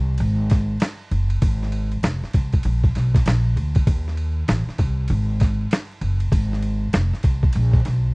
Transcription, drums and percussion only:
0.18 ride
0.50 kick, snare, ride
0.80 snare, hi-hat pedal, ride
1.11 ride
1.30 ride
1.42 kick, ride
1.63 snare
1.72 ride
1.92 ride
2.03 snare, hi-hat pedal, ride
2.24 snare
2.33 kick, ride
2.53 kick, ride
2.63 ride
2.84 kick
2.95 snare, ride
3.14 kick, snare, ride
3.26 snare, hi-hat pedal, ride
3.57 ride
3.75 kick, ride
3.87 kick, ride
4.08 snare
4.17 ride
4.48 snare, hi-hat pedal, ride
4.69 snare
4.78 kick, ride
5.08 ride
5.40 kick, snare, ride
5.71 snare, hi-hat pedal, ride
6.01 ride
6.20 ride
6.32 kick, ride
6.53 snare
6.62 ride
6.93 snare, hi-hat pedal, ride
7.13 snare
7.23 kick, ride
7.43 kick
7.53 ride
7.73 kick
7.85 snare, ride

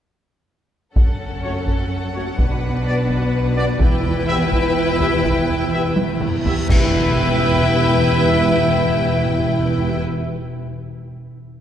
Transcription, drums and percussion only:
0.96 taiko
1.67 taiko
2.39 taiko
3.09 taiko
3.80 taiko
4.04 taiko low
4.52 taiko
5.00 taiko low
5.24 taiko
5.48 taiko low
5.96 taiko high
6.20 taiko low-mid
6.46 taiko low
6.69 concert bass drum, taiko, crash

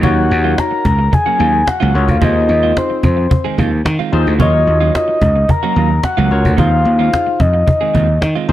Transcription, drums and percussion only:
0.03 cajon bass
0.30 cajon slap
0.45 cajon slap
0.58 cajon slap
0.85 cajon bass
1.00 cajon slap
1.13 cajon bass
1.28 cajon slap
1.40 cajon slap
1.55 cajon slap
1.67 cajon slap
1.94 cajon slap
2.08 cajon bass
2.22 cajon bass
2.37 cajon slap
2.49 cajon slap
2.64 cajon slap
2.77 cajon slap
2.91 cajon slap
3.03 cajon bass
3.19 cajon slap
3.31 cajon bass
3.46 cajon slap
3.58 cajon bass
3.73 cajon slap
3.86 cajon slap
4.01 cajon slap
4.28 cajon slap
4.40 cajon bass
4.67 cajon slap
4.82 cajon slap
4.95 cajon slap
5.22 cajon bass
5.36 cajon slap
5.49 cajon bass
5.77 cajon slap
5.91 cajon slap
6.04 cajon slap
6.31 cajon slap
6.45 cajon bass
6.58 cajon bass
6.85 cajon slap
7.00 cajon slap
7.13 cajon slap
7.40 cajon bass
7.55 cajon slap
7.68 cajon bass
7.95 cajon bass
8.09 cajon slap
8.22 cajon slap
8.49 cajon slap

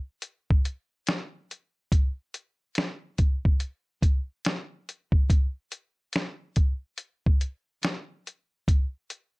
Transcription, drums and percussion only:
0.22 closed hi-hat
0.51 kick
0.65 closed hi-hat
1.07 finger snap, snare, closed hi-hat
1.51 closed hi-hat
1.92 kick, closed hi-hat
2.34 closed hi-hat
2.75 finger snap, snare, closed hi-hat
3.18 kick, closed hi-hat
3.45 kick
3.60 closed hi-hat
4.02 kick, closed hi-hat
4.45 finger snap, snare, closed hi-hat
4.89 closed hi-hat
5.12 kick
5.30 kick, closed hi-hat
5.72 closed hi-hat
6.13 finger snap, snare, closed hi-hat
6.56 kick, closed hi-hat
6.98 closed hi-hat
7.26 kick
7.41 closed hi-hat
7.83 finger snap, snare, closed hi-hat
8.27 closed hi-hat
8.68 kick, closed hi-hat
9.10 closed hi-hat

